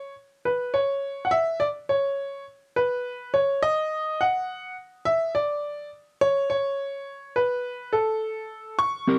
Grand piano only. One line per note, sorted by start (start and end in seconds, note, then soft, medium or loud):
0.00 0.13 C#5 medium
0.45 0.75 B4 medium
0.74 1.26 C#5 medium
1.25 1.32 F#5 medium
1.31 1.61 E5 loud
1.60 1.66 D5 medium
1.89 2.43 C#5 medium
2.76 3.36 B4 medium
3.34 3.60 C#5 medium
3.63 4.22 D#5 loud
4.21 4.74 F#5 medium
5.05 5.33 E5 loud
5.35 5.88 D5 medium
6.21 6.48 C#5 loud
6.50 7.32 C#5 loud
7.36 7.95 B4 medium
7.93 8.75 A4 medium
8.79 9.19 C#6 loud